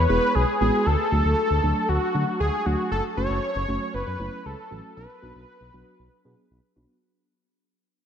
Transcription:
0.09 0.19 E1 loud
0.09 0.31 G#3 medium
0.09 0.31 B3 medium
0.09 0.31 E4 medium
0.09 0.31 G#4 medium
0.09 0.36 B4 loud
0.35 0.45 B1 loud
0.35 0.60 G#4 loud
0.61 0.70 A1 medium
0.61 0.82 G#3 medium
0.61 0.82 B3 medium
0.61 0.82 E4 medium
0.61 0.82 F#4 medium
0.61 0.88 G#4 loud
0.86 0.96 D2 loud
0.86 1.90 A4 loud
1.12 1.21 D2 loud
1.12 1.33 F#3 medium
1.12 1.33 A3 medium
1.12 1.33 D4 medium
1.12 1.33 F#4 medium
1.25 1.34 D2 loud
1.50 1.60 D2 medium
1.63 1.73 D2 medium
1.63 1.85 F#3 medium
1.63 1.85 A3 medium
1.63 1.85 D4 medium
1.63 1.85 A4 medium
1.89 1.98 D2 medium
1.89 2.40 F#4 loud
2.14 2.24 D3 loud
2.14 2.36 F#3 medium
2.14 2.36 A3 medium
2.14 2.36 D4 medium
2.14 2.36 F#4 medium
2.40 2.50 D2 loud
2.40 2.67 G#4 loud
2.66 2.75 D2 loud
2.66 2.87 F#3 medium
2.66 2.87 A3 medium
2.66 2.87 D4 medium
2.66 2.87 F#4 medium
2.66 2.91 F#4 medium
2.91 3.01 F#1 loud
2.91 3.03 A4 loud
3.17 3.27 F#1 loud
3.17 3.39 F#3 medium
3.17 3.39 A3 medium
3.17 3.39 C#4 medium
3.17 3.39 F#4 medium
3.17 3.96 C#5 loud
3.30 3.39 F#1 loud
3.55 3.65 F#1 loud
3.68 3.78 F#1 loud
3.68 3.90 F#3 medium
3.68 3.90 A3 medium
3.68 3.90 C#4 medium
3.68 3.90 F#4 medium
3.94 4.03 F#1 loud
3.94 4.47 B4 loud
4.07 4.16 F#2 loud
4.20 4.29 F#1 loud
4.20 4.41 F#3 medium
4.20 4.41 A3 medium
4.20 4.41 C#4 medium
4.20 4.41 E4 medium
4.45 4.55 C#2 medium
4.45 4.96 A4 loud
4.71 4.81 A1 medium
4.71 4.92 F#3 medium
4.71 4.92 A3 medium
4.71 4.92 C#4 medium
4.71 4.92 F#4 medium
4.97 5.06 B1 loud
4.97 6.46 B4 loud
5.22 5.32 B1 loud
5.22 5.44 F#3 medium
5.22 5.44 B3 medium
5.22 5.44 D4 medium
5.22 5.44 F#4 medium
5.35 5.45 B1 medium
5.61 5.70 B1 loud
5.73 5.83 B1 loud
5.73 5.95 F#3 medium
5.73 5.95 B3 medium
5.73 5.95 D4 medium
5.73 5.95 F#4 medium
5.99 6.09 B1 loud
6.25 6.34 B2 loud
6.25 6.46 F#3 medium
6.25 6.46 B3 medium
6.25 6.46 D4 medium
6.25 6.46 G#4 medium
6.51 6.60 B1 medium
6.76 6.86 B1 loud
6.76 6.98 F#3 medium
6.76 6.98 B3 medium
6.76 6.97 D4 medium
6.76 6.97 F#4 medium

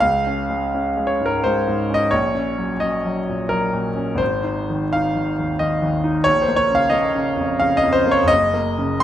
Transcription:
0.00 2.08 C#2 medium
0.00 1.07 F5 loud
0.27 0.64 C#4 soft
0.50 0.87 G#3 medium
0.74 1.11 C#4 medium
0.97 1.34 G#3 medium
1.07 1.25 C#5 medium
1.20 1.57 G#2 soft
1.26 1.43 A#4 medium
1.44 1.81 G#3 medium
1.44 1.95 C5 loud
1.68 2.04 G#2 medium
1.90 2.12 C#4 medium
1.94 2.12 D#5 loud
2.11 4.16 A#1 medium
2.11 2.80 C#5 loud
2.35 2.71 C#4 medium
2.58 2.94 F#3 soft
2.80 3.18 C#4 medium
2.80 3.50 D#5 medium
3.05 3.41 F#3 medium
3.28 3.65 A#2 soft
3.49 3.88 F#3 medium
3.49 4.20 A#4 medium
3.73 4.11 A#2 medium
3.96 4.20 C#4 medium
4.15 6.20 G#1 medium
4.15 4.93 C5 loud
4.43 4.84 D#4 soft
4.70 5.08 D#3 medium
4.93 5.31 D#4 medium
4.93 5.60 F5 loud
5.15 5.51 D#3 medium
5.39 5.74 D#2 soft
5.59 5.95 D#3 medium
5.59 6.25 D#5 medium
5.82 6.17 D#2 medium
6.04 6.26 D#4 medium
6.24 8.25 A#1 medium
6.24 6.42 C#5 loud
6.42 6.59 C5 medium
6.48 6.84 A#3 medium
6.56 6.75 C#5 loud
6.70 7.06 C#3 medium
6.75 6.92 F5 loud
6.90 7.28 A#3 medium
6.90 7.59 D#5 loud
7.15 7.51 C#3 medium
7.36 7.73 F2 medium
7.60 7.97 C#3 medium
7.60 7.77 F5 loud
7.77 7.94 D#5 loud
7.83 8.20 F2 medium
7.93 8.11 C5 loud
8.06 8.29 A#3 medium
8.11 8.29 C#5 loud
8.23 9.03 F#1 medium
8.28 9.01 D#5 loud
8.54 8.93 A#3 medium
8.78 9.03 C#3 medium
9.00 9.03 C6 loud

